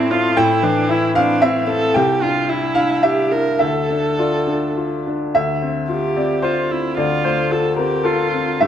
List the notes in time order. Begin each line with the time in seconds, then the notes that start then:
Already playing: A2 C4 E4 D5 E5 A5
0.11 C4 F4
0.36 A2 E4 G5
0.63 E3 D4
0.89 E4
1.15 C4 D4 F5
1.42 C4 E4 E5
1.69 C4 A4
1.94 C2 G4 G5
2.22 D4 F4
2.49 E4
2.75 D4 F5
3.03 E4 G4 E5
3.32 D4 A#4
3.59 D2 A4 E5
3.90 D4
4.18 F4 D5
4.47 D4
4.77 F4
5.07 D4
5.35 D2 E5
5.62 C4
5.88 F4 G4
6.16 C4 D5
6.42 F4 C5
6.71 C4 E4
6.97 D2 F4 D5
7.24 A3 C5
7.51 F4 A4
7.76 C4 G4 A#4
8.03 F4 A4
8.33 C4
8.60 G2 G4 E5